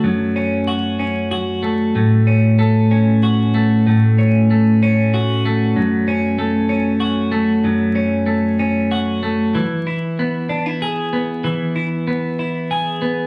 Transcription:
\new Staff \with { instrumentName = "Clean electric guitar" } { \time 6/8 \key a \major \tempo 4. = 63 fis,8 cis'8 fis'8 cis'8 fis'8 a8 | a,8 cis'8 a8 cis'8 fis'8 a8 | a,8 cis'8 a8 cis'8 fis'8 a8 | fis,8 cis'8 a8 cis'8 fis'8 a8 |
fis,8 cis'8 a8 cis'8 fis'8 a8 | e8 e'8 b8 d'16 e'16 gis'8 b8 | e8 e'8 b8 e'8 gis'8 b8 | }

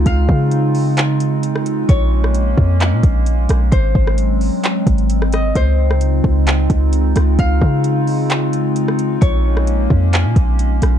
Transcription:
<<
  \new Staff \with { instrumentName = "Harp" } { \time 4/4 \key des \major \tempo 4 = 131 f''2. r4 | des''2. r4 | c''2.~ c''8 ees''8 | c''2. r4 |
f''2. r4 | des''2. r4 | }
  \new Staff \with { instrumentName = "Ambient pad" } { \time 4/4 \key des \major << { <des c' ees' f'>1 | <bes des'>1 | <ges c'>1 | <des ees' f'>1~ |
<des ees' f'>1 | <aes bes des'>1 | } \\ { aes1~ | aes1~ | aes1~ | aes1~ |
aes1 | r1 | } >> }
  \new Staff \with { instrumentName = "808-style bass" } { \clef bass \time 4/4 \key des \major des,8 des2.~ des8 | bes,,4. f,8. bes,16 bes,,4 bes,,8 | aes,,8 aes,,4~ aes,,16 r8. aes,,4. | des,4. des,4 des,4 des,8 |
des,8 des2.~ des8 | bes,,4. f,8. bes,16 bes,,4 bes,,8 | }
  \new DrumStaff \with { instrumentName = "Drums" } \drummode { \time 4/4 <hh bd>8 bd8 hh8 hho8 <hc hh>8 hh8 hh16 ss16 hh8 | <hh bd>8. ss16 hh8 bd8 <hc hh>8 <hh bd>8 hh8 <hh ss>8 | <hh bd>8 bd16 ss16 hh8 hho8 <hc hh>8 <hh bd>16 hh16 hh16 ss16 <hh ss>8 | <hh bd>8. ss16 hh8 bd8 <hc hh>8 <hh bd>8 hh8 <hh ss>8 |
<hh bd>8 bd8 hh8 hho8 <hc hh>8 hh8 hh16 ss16 hh8 | <hh bd>8. ss16 hh8 bd8 <hc hh>8 <hh bd>8 hh8 <hh ss>8 | }
>>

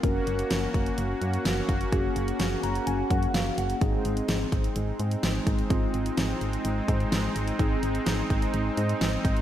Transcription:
<<
  \new Staff \with { instrumentName = "Tine electric piano" } { \time 4/4 \key aes \mixolydian \tempo 4 = 127 << { r1 | r4. bes''8 aes''8 ges''8 f''8 ges''8 | r1 | r1 |
r1 | } \\ { <des' ges' bes'>1 | <des' ges' aes'>1 | <c' ees' aes'>1 | <c' ees' f'>1 |
<c' ees' aes'>1 | } >> }
  \new Staff \with { instrumentName = "Analog synth pad" } { \time 4/4 \key aes \mixolydian <bes des' ges'>1~ | <bes des' ges'>1 | <aes c' ees'>1~ | <aes c' ees'>1~ |
<aes c' ees'>1 | }
  \new Staff \with { instrumentName = "FM bass" } { \clef bass \time 4/4 \key aes \mixolydian ges,,8 ges,,8 ges,,8 ges,,8 ges,,8 ges,8 ges,,8 ges,,8 | ges,,8 ges,,8 ges,,8 ges,,8 ges,,8 ges,8 ges,,8 ges,,8 | aes,,8 aes,,8 aes,,8 aes,,8 aes,,8 aes,8 aes,,8 aes,,8 | aes,,8 aes,,8 aes,,8 aes,,8 aes,,8 aes,8 aes,,8 aes,,8 |
aes,,8 aes,,8 aes,,8 aes,,8 aes,,8 aes,8 aes,,8 aes,,8 | }
  \new DrumStaff \with { instrumentName = "Drums" } \drummode { \time 4/4 <hh bd>8 hh16 hh16 <hh sn>8 <hh bd>16 hh16 hh8 hh16 hh16 <hh sn>8 <hh bd>16 hh16 | <hh bd>8 hh16 hh16 <hh sn>8 hh16 hh16 hh8 <hh bd>16 hh16 <hh sn>8 hh16 hh16 | <hh bd>8 hh16 hh16 <hh sn>8 <hh bd>16 hh16 hh8 hh16 hh16 <hh sn>8 <hh bd>16 hh16 | <hh bd>8 hh16 hh16 <hh sn>8 hh16 hh16 hh8 <hh bd>16 hh16 <hh sn>8 hh16 hh16 |
<hh bd>8 hh16 hh16 <hh sn>8 <hh bd>16 hh16 hh8 hh16 hh16 <hh sn>8 <hh bd>16 hh16 | }
>>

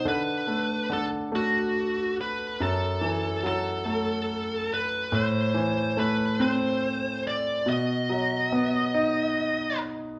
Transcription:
<<
  \new Staff \with { instrumentName = "Lead electric guitar" } { \time 6/8 \key a \dorian \tempo 4. = 47 b'4 a'8 fis'4 b'8 | a'4 a'4. b'8 | c''4 b'8 c''4 d''8 | dis''2~ dis''8 r8 | }
  \new Staff \with { instrumentName = "Grand piano" } { \clef bass \time 6/8 \key a \dorian d8 a8 d8 a4. | fis,8 e8 fis8 a4. | a,8 e8 a8 c'4. | b,8 fis8 b8 dis'4. | }
>>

